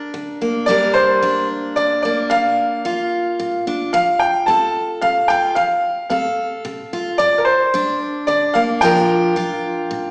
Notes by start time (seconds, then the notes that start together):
Already playing: D4 A#4
0.14 D3
0.41 A#3
0.66 G2 G3 A#3 D4 D5
0.70 A#4
0.94 C5
1.23 G3 D4
1.76 D3 D5
2.02 A#3 D5
2.30 A#2 F5
2.85 F3 F4
3.39 A#2
3.67 D4
3.93 F3 F5
4.19 G5
4.46 C4 A4 A5
5.01 C3 F5
5.28 F4 G5
5.55 F3 F5
6.10 C4 A4 F5
6.65 C3
6.93 F4
7.18 G2 D5
7.38 A#4
7.45 C5
7.74 G3 D4
8.27 D3 D5
8.54 A#3 F5
8.81 A#2 F3 D4 F4 A#4 G5
9.36 F3 F4
9.91 A#2